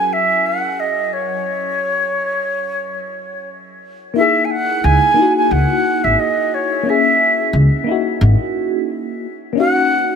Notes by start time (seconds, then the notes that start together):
Already playing: F#3 C#4 E4 F#4 G#4 A#4 G#5
0.12 E5
0.46 F#5
0.79 D#5
1.13 C#5
4.14 A#3 D#4 E5
4.18 E4 G#4
4.44 G#5
4.50 F#5
4.84 C#2 G#5
5.14 A#3 D#4
5.19 E4 F#4
5.37 G#5
5.51 C#2 F#5
6.04 G#1 E5
6.19 D#5
6.54 C#5
6.83 A#3 C#4
6.88 E4 G#4 E5
7.53 C#2
7.84 A#3 D#4
7.88 E4 F#4
8.21 G#1
9.53 A#3 C#4
9.57 D#4 F#4 F#5